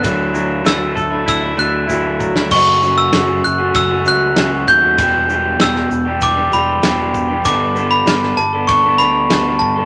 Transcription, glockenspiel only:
\new Staff \with { instrumentName = "Glockenspiel" } { \time 4/4 \key fis \phrygian \tempo 4 = 97 fis'''4 e'''4 e'''8 fis'''4 r8 | cis'''8. e'''8. fis'''8 e'''8 fis'''4 g'''8~ | g'''4 e'''4 d'''8 b''4 r8 | d'''8. b''8. a''8 cis'''8 b''4 a''8 | }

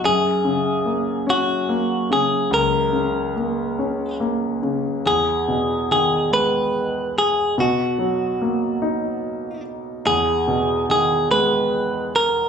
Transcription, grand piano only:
\new Staff \with { instrumentName = "Grand piano" } { \clef bass \time 6/8 \key e \lydian \tempo 4. = 48 fis,8 cis8 ais8 cis'8 ais8 cis8 | cis,8 cis8 ais8 cis'8 ais8 cis8 | e,8 b,8 dis8 gis4. | b,8 fis8 ais8 dis'4. |
e,8 b,8 dis8 gis4. | }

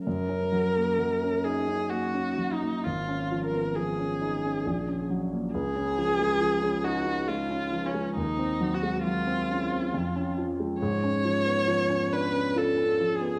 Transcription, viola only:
\new Staff \with { instrumentName = "Viola" } { \time 3/4 \key fis \major \tempo 4 = 68 ais'4. gis'8 \tuplet 3/2 { fis'4 dis'8 } | \tuplet 3/2 { eis'4 ais'8 } gis'4. r8 | gis'4. fis'8 \tuplet 3/2 { eis'4 cis'8 } | \tuplet 3/2 { dis'4 fis'8 } eis'4. r8 |
\key cis \phrygian cis''4. b'8 \tuplet 3/2 { a'4 gis'8 } | }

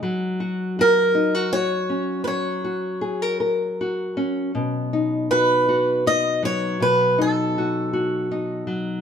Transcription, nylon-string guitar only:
\new Staff \with { instrumentName = "Nylon-string guitar" } { \time 3/4 \key b \mixolydian \tempo 4 = 80 << { r8 fis'8 fis'8 dis'16 fis'16 fis'4 | r8 fis'8 gis'16 ais'16 ais'8 fis'4 | r8 dis'8 fis'8 fis'8 dis'4 | r8 dis'8 fis'8 fis'8 dis'4 | } \\ { fis2~ fis8 cis'8 | fis2~ fis8 cis'8 | b,2~ b,8 fis8 | b,2~ b,8 fis8 | } >> }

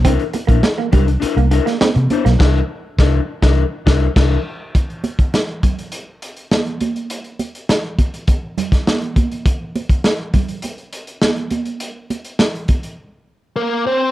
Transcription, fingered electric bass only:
\new Staff \with { instrumentName = "Fingered electric bass" } { \clef bass \time 4/4 \key c \mixolydian \tempo 4 = 102 c,16 r8 bes,,16 r8 c,8 r16 c,8 r8 c16 r16 b,,16 | c,8 r8 c,8 r16 c,8 r16 c,8 c,8 r8 | r1 | r1 |
r1 | r1 | }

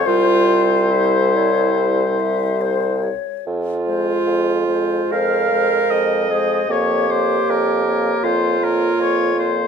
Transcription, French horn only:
\new Staff \with { instrumentName = "French horn" } { \time 4/4 \key f \minor \tempo 4 = 74 g2.~ g8 r8 | r8 aes4 aes4 aes4 aes8 | bes8 bes4 bes4 bes4 bes8 | }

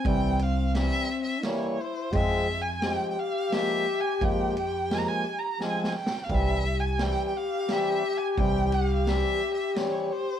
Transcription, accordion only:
\new Staff \with { instrumentName = "Accordion" } { \clef bass \time 3/4 \tempo 4 = 86 <e g c'>8 r8 <e g c'>8 r8 <e g bes>8 r8 | <f aes c'>8 r8 <f aes c'>8 r8 <f aes bes>8 r8 | <f aes bes>8 r8 <f aes bes>8 r8 <f aes c'>8 r8 | <e g c'>8 r8 <e g c'>8 r8 <e g c'>8 r8 |
<e g c'>8 r8 <e g c'>8 r8 <e g c'>8 r8 | }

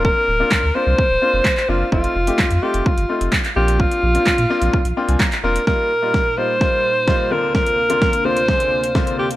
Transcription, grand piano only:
\new Staff \with { instrumentName = "Grand piano" } { \time 4/4 \key bes \mixolydian \tempo 4 = 128 << { r1 | r1 | r2 r8 g''16 aes''16 r4 | r1 |
r1 | } \\ { <bes c' d' f'>8 r16 <bes c' d' f'>8 r16 <bes c' d' f'>8 r8 <bes c' d' f'>8 r8 <bes c' d' f'>16 r16 | <a c' ees' f'>8 r16 <a c' ees' g'>8 r16 <a c' ees' f'>8 r8 <a c' ees' f'>8 r8 <bes c' d' f'>8~ | <bes c' d' f'>8 r16 <bes c' d' f'>8 r16 <bes c' d' f'>8 r8 <bes c' d' f'>8 r8 <bes c' d' f'>16 r16 | <g bes ees' f'>8 r16 <g bes ees' f'>8 r16 <g bes ees' f'>16 r16 <g bes ees' f'>8 r8 <g bes ees' f'>8 <d bes c' d' f'>8~ |
<d bes c' d' f'>8 r16 <d bes c' d' f'>8 r16 <d bes c' d' f'>16 r16 <d bes c' d' aes'>8 r8 <d bes c' d' f'>8 r8 | } >> }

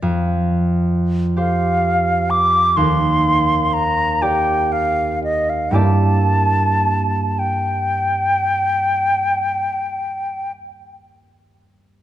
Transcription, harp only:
\new Staff \with { instrumentName = "Harp" } { \time 12/8 \key g \minor \tempo 4. = 39 f,4. <g' c''>4. ees,4. <g' d''>4. | <g, bes e' g' d''>1. | }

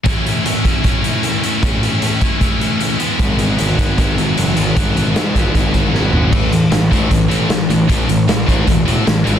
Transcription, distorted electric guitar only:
\new Staff \with { instrumentName = "Distorted electric guitar" } { \clef bass \time 4/4 \key a \major \tempo 4 = 153 <a, e a cis' e'>4 <e a cis' e'>8 <a cis' e'>8 <a, e a cis' e'>8 <a cis' e'>4 <a cis' e'>8 | <a, e a cis'>4 <e a cis' e'>8 <a cis' e'>8 <a, e a cis' e'>8 <a cis' e'>4 <gis, e gis b e'>8 | <gis, e gis b e'>4 <e gis b e'>8 <gis b e'>8 <gis, e gis b e'>8 <gis b e'>4 <gis b e'>8 | <gis, e gis b e'>4 <e gis b e'>8 <gis b e'>8 <gis, e gis b e'>8 <gis b e'>4 <gis b e'>8 |
<a, e a>8 <a, e>8 <a, e>8 <a, e a>8 <a, e>8 <a, e a>8 <a, e>8 <a, e>8 | <a, e a>8 <a, e>8 <a, e>8 <a, e a>8 <a, e>8 <a, e a>8 <a, e>8 <gis, e gis>8 | }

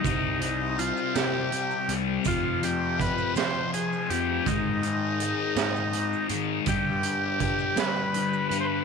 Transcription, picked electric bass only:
\new Staff \with { instrumentName = "Picked electric bass" } { \clef bass \time 6/8 \tempo 4. = 54 c,4. c4 c,8 | f,4. f4 f,8 | aes,4. aes,4 aes,8 | g,4. g4 g,8 | }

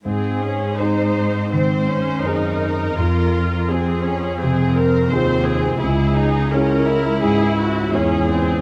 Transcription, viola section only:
\new Staff \with { instrumentName = "Viola section" } { \time 4/4 \key aes \mixolydian \tempo 4 = 84 << { aes'4 c''4 c''4 bes'4~ | bes'4 aes'4 aes'8 bes'8 c''8 aes'8 | aes'4 bes'4 aes'8 ges'8 aes'4 | } \\ { c'8 des'8 ees'4 c'8 des'8 ees'4 | f'4 c'8 des'8 c'4 c'4 | fes'8 ees'8 des'8 fes'4. des'8 c'8 | } >> }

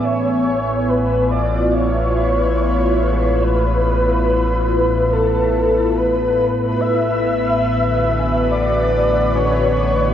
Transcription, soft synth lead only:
\new Staff \with { instrumentName = "Soft synth lead" } { \time 4/4 \key cis \phrygian \tempo 4 = 71 cis''4 b'8 d''8 cis''2 | b'2 a'4 b'4 | e''2 d''4 cis''4 | }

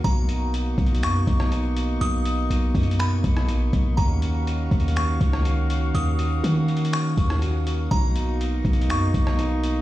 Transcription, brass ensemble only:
\new Staff \with { instrumentName = "Brass ensemble" } { \time 4/4 \key ces \lydian \tempo 4 = 122 << { <b, dis'>1~ | <b, dis'>1 | <ees des' ges' f''>1~ | <ees des' ges' f''>1 |
<b, ais dis'>1 | } \\ { bes1~ | bes1~ | bes1~ | bes1 |
r1 | } >> }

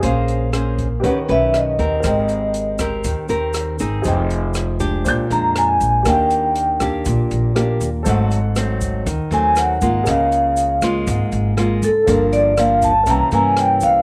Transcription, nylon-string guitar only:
\new Staff \with { instrumentName = "Nylon-string guitar" } { \time 4/4 \key aes \major \tempo 4 = 120 << { <des' aes' c''>4 <des' aes' c''>8 r8 <des' g' b'>8 <des' g' b'>4 <c' g' bes'>8~ | <c' g' bes'>4. <c' g' bes'>4 <c' g' bes'>4 <c' ees' aes'>8~ | <c' ees' aes'>4. <aes d' g'>4 <aes d'>4. | <bes d' g'>4. <bes d' g'>4. <bes d' g'>8 r8 |
<ges a c'>8 r8 <ges a c'>4 r8 <ges a c'>4 <aes bes f'>8~ | <aes bes f'>4. <aes bes f'>4. <aes bes f'>8 r8 | <f bes d'>4 <f bes d'>8 r8 <e bes des'>8 <e bes des'>4. | } \\ { bes2 ees2 | aes2 ees2 | f2 bes,2 | ees2 bes,2 |
aes,2 ees2 | des2 aes,2 | g,2 c2 | } >> }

